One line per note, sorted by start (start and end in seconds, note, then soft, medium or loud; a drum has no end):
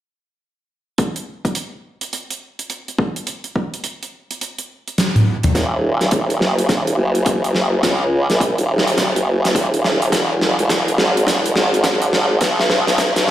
0.98 kick loud
0.98 closed hi-hat medium
1.16 closed hi-hat medium
1.45 kick medium
1.45 closed hi-hat soft
1.55 closed hi-hat medium
2.01 closed hi-hat medium
2.13 closed hi-hat medium
2.31 closed hi-hat medium
2.59 closed hi-hat medium
2.70 closed hi-hat medium
2.88 closed hi-hat medium
2.99 kick loud
3.16 closed hi-hat medium
3.27 closed hi-hat medium
3.44 closed hi-hat soft
3.56 kick medium
3.74 closed hi-hat soft
3.84 closed hi-hat medium
4.03 closed hi-hat medium
4.31 closed hi-hat medium
4.41 closed hi-hat medium
4.58 closed hi-hat medium
4.88 closed hi-hat medium
4.98 snare medium
4.98 closed hi-hat medium
5.16 closed hi-hat medium
5.16 high tom medium
5.43 closed hi-hat medium
5.43 mid tom medium
5.55 5.99 D#1 loud
5.55 kick loud
5.55 snare soft
5.55 closed hi-hat medium
6.01 6.39 D#1 medium
6.01 snare soft
6.01 closed hi-hat soft
6.11 kick medium
6.11 closed hi-hat loud
6.30 closed hi-hat medium
6.40 6.67 F#1 loud
6.40 snare soft
6.59 closed hi-hat medium
6.69 6.96 D#1 medium
6.69 kick loud
6.69 snare medium
6.69 closed hi-hat medium
6.87 closed hi-hat medium
6.97 7.82 F#1 loud
7.15 closed hi-hat medium
7.26 kick loud
7.26 closed hi-hat loud
7.44 closed hi-hat medium
7.55 snare medium
7.83 8.27 C#2 medium
7.83 kick loud
7.83 snare medium
7.83 closed hi-hat medium
8.30 8.56 A#1 medium
8.30 snare soft
8.30 closed hi-hat medium
8.41 kick medium
8.41 closed hi-hat medium
8.58 9.13 D#1 loud
8.58 closed hi-hat medium
8.78 snare medium
8.87 closed hi-hat medium
8.98 kick loud
8.98 snare medium
8.98 closed hi-hat medium
9.15 9.53 F#1 loud
9.15 closed hi-hat medium
9.45 snare medium
9.45 closed hi-hat medium
9.55 10.11 D#1 medium
9.55 kick loud
9.55 closed hi-hat medium
9.74 closed hi-hat medium
9.84 snare medium
10.02 closed hi-hat medium
10.12 10.56 E1 medium
10.12 kick loud
10.12 snare medium
10.12 closed hi-hat loud
10.41 snare medium
10.59 10.96 E1 medium
10.59 closed hi-hat medium
10.69 kick medium
10.69 snare medium
10.69 closed hi-hat medium
10.88 closed hi-hat medium
10.98 11.25 G#1 loud
10.98 snare medium
11.17 closed hi-hat medium
11.26 11.54 E1 medium
11.26 kick loud
11.26 snare medium
11.26 closed hi-hat medium
11.46 closed hi-hat medium
11.55 12.39 G#1 loud
11.55 snare medium
11.74 closed hi-hat medium
11.84 kick loud
11.84 snare medium
11.84 closed hi-hat medium
12.02 closed hi-hat medium
12.13 snare loud
12.41 12.85 B1 loud
12.41 kick loud
12.41 snare medium
12.41 closed hi-hat medium
12.60 snare medium
12.70 snare loud
12.87 13.13 B1 medium
12.87 snare medium
12.87 closed hi-hat medium
12.98 kick medium
12.98 snare medium
12.98 closed hi-hat medium
13.16 13.31 B1 loud
13.16 snare medium
13.16 closed hi-hat medium
13.28 snare loud